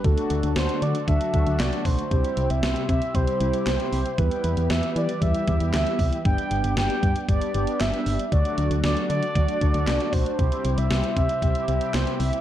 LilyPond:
<<
  \new Staff \with { instrumentName = "Soft synth lead" } { \time 4/4 \key d \mixolydian \tempo 4 = 116 a'4 c''8 d''8 e''4 d''8 c''8~ | c''8. e''8. e''8 c''4 c''4 | b'4 e''8 d''8 e''4 e''4 | g''4 g''4 d''4 e''4 |
d''4 d''8 d''2 c''8~ | c''8. e''8. e''4. c''8 e''8 | }
  \new Staff \with { instrumentName = "Analog synth pad" } { \time 4/4 \key d \mixolydian << { <d d' a'>1 | <c c' g'>1 | <e b'>1 | b1 |
<d a'>1 | <c c' g'>1 | } \\ { fis'1 | e'1~ | e'1 | d'1 |
fis'1 | e'1 | } >> }
  \new Staff \with { instrumentName = "Analog polysynth" } { \time 4/4 \key d \mixolydian <fis a d' fis'>2 <fis a d' fis'>8 <fis a d' fis'>4. | <g c' e' g'>2 <g c' e' g'>8 <g c' e' g'>4. | <g b e' g'>2 <g b e' g'>8 <g b e' g'>4. | <g b d' g'>2 <g b d' g'>8 <g b d' g'>4. |
<fis a d' fis'>2 <fis a d' fis'>8 <fis a d' fis'>4. | <g c' e' g'>2 <g c' e' g'>8 <g c' e' g'>4. | }
  \new Staff \with { instrumentName = "FM bass" } { \clef bass \time 4/4 \key d \mixolydian d,16 r16 d,16 d,16 d,16 r16 d16 r16 d,16 r16 d,16 d,16 c,16 r16 b,,16 r16 | c,16 r16 c,16 c,16 c,16 r16 c16 r16 c,16 r16 c,16 r16 c,16 r16 c,16 r16 | e,16 r16 e,16 e,16 e,16 r16 e16 r16 e,16 r16 e,16 e,16 d,16 r16 c,16 r16 | g,,16 r16 g,,16 g,,16 g,,16 r16 g,16 r16 g,,16 r16 g,,16 r16 g,,16 r16 g,,16 r16 |
d,16 r16 d,16 d,16 d,16 r16 d16 r16 d,16 r16 d,16 d,16 c,16 r16 b,,16 r16 | c,16 r16 c,16 c,16 c,16 r16 c16 r16 c,16 r16 c,16 r16 c,16 r16 c,16 r16 | }
  \new DrumStaff \with { instrumentName = "Drums" } \drummode { \time 4/4 <hh bd>16 hh16 hh16 hh16 <hh sn>16 hh16 hh16 hh16 <hh bd>16 hh16 <hh bd>16 hh16 <hc hh sn>16 hh16 <hho bd>16 hh16 | <hh bd>16 hh16 hh16 hh16 <hh sn>16 hh16 <hh bd>16 hh16 <hh bd>16 hh16 hh16 hh16 <hc hh sn>16 hh16 hho16 hh16 | <hh bd>16 hh16 hh16 hh16 <hh sn>16 hh16 hh16 hh16 <hh bd>16 hh16 <hh bd>16 hh16 <hc hh sn>16 hh16 <hho bd>16 hh16 | <hh bd>16 hh16 hh16 hh16 <hh sn>16 hh16 <hh bd>16 hh16 <hh bd>16 hh16 hh16 hh16 <hc hh sn>16 hh16 hho16 hh16 |
<hh bd>16 hh16 hh16 hh16 <hh sn>16 hh16 hh16 hh16 <hh bd>16 hh16 <hh bd>16 hh16 <hc hh sn>16 hh16 <hho bd>16 hh16 | <hh bd>16 hh16 hh16 hh16 <hh sn>16 hh16 <hh bd>16 hh16 <hh bd>16 hh16 hh16 hh16 <hc hh sn>16 hh16 hho16 hh16 | }
>>